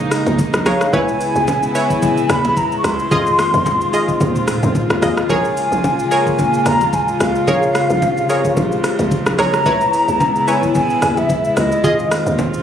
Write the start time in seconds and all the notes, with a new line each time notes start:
Already playing: A#1 C#3 G#3 A#3 D#4 F5
0.11 cross-stick, open hi-hat, high bongo, shaker
0.26 C#2, low bongo, shaker
0.39 kick, high bongo, shaker
0.54 A#1, cross-stick, shaker
0.66 A#1 G#4 A#4 C#5 F5, cross-stick, open hi-hat, low bongo, shaker
0.81 cross-stick, shaker
0.93 C#2 C#3 B3 E4 B4 C#5 G#5, kick, low conga, shaker
1.08 shaker
1.21 open hi-hat, shaker
1.36 C#2, shaker
1.48 kick, high bongo, low conga, shaker
1.63 shaker
1.75 E4 B4 C#5 G#5, open hi-hat, shaker
1.90 kick, shaker
2.02 kick, low conga, shaker
2.17 shaker
2.29 D#2 B5, cross-stick, open hi-hat, high bongo, shaker
2.45 low bongo, shaker
2.57 A#5, kick, high bongo, shaker
2.72 shaker
2.79 C#6
2.84 C#2 C6, cross-stick, open hi-hat, low bongo, shaker
2.99 shaker
3.11 F2 D#3 C4 F4 G#4 D#5, kick, low conga, shaker
3.27 shaker
3.39 cross-stick, open hi-hat, low bongo, shaker
3.54 F2, low bongo, shaker
3.66 kick, high bongo, low conga, shaker
3.81 shaker
3.93 F4 G#4 D#5, open hi-hat, shaker
4.08 kick, shaker
4.21 D#2, kick, low conga, shaker
4.36 mid tom, shaker
4.48 cross-stick, open hi-hat, high bongo, shaker
4.63 F2, mid tom, low bongo, shaker
4.75 kick, high bongo, shaker
4.90 D#2, cross-stick, shaker
5.02 D#2 F4 G#4 D#5 F5, cross-stick, open hi-hat, low bongo, shaker
5.17 cross-stick, shaker
5.29 A#1 C#3 G#3 A#3 G#4 A#4 C#5 G#5, kick, low conga, shaker
5.45 shaker
5.57 open hi-hat, shaker
5.72 A#1, shaker
5.84 kick, high bongo, low conga, shaker
5.99 shaker
6.11 G#4 A#4 C#5 G#5, open hi-hat, shaker
6.27 kick, shaker
6.39 kick, low conga, shaker
6.54 shaker
6.66 D#2 A#5, cross-stick, open hi-hat, high bongo, shaker
6.81 low bongo, shaker
6.93 G#5, kick, high bongo, shaker
7.08 shaker
7.20 C#2 F5, cross-stick, open hi-hat, low bongo, shaker
7.35 shaker
7.47 A#1 C3 G#4 A#4 C#5, kick, low conga, shaker
7.63 shaker
7.75 cross-stick, open hi-hat, shaker
7.90 A#1, shaker
8.02 kick, high bongo, low conga, shaker
8.17 shaker
8.29 G#4 A#4 C#5, open hi-hat, shaker
8.45 kick, shaker
8.57 A#1, kick, low conga, shaker
8.72 shaker
8.84 cross-stick, open hi-hat, high bongo, shaker
8.99 C#2, low bongo, shaker
9.11 kick, high bongo, shaker
9.26 A#1, cross-stick, shaker
9.38 A#1 G#4 A#4 C#5 A#5, cross-stick, open hi-hat, low bongo, shaker
9.54 cross-stick, shaker
9.66 C#2 B3 E4 B4 C#5, kick, low conga, shaker
9.81 shaker
9.93 open hi-hat, shaker
10.08 C#2, shaker
10.20 kick, high bongo, low conga, shaker
10.36 shaker
10.47 E4 B4 C#5 G#5, open hi-hat, shaker
10.63 kick, shaker
10.75 G#5, kick, low conga, shaker
10.90 shaker
11.02 D#2, cross-stick, open hi-hat, high bongo, shaker
11.17 E5, low bongo, shaker
11.29 kick, high bongo, shaker
11.44 shaker
11.57 C#2 D#5, cross-stick, open hi-hat, low bongo, shaker
11.72 shaker
11.84 F2 D#3 C4 F4 G#4 D#5, kick, low conga, shaker
11.99 shaker
12.11 cross-stick, open hi-hat, shaker
12.26 D#2, shaker
12.39 kick, high bongo, low conga, shaker
12.54 shaker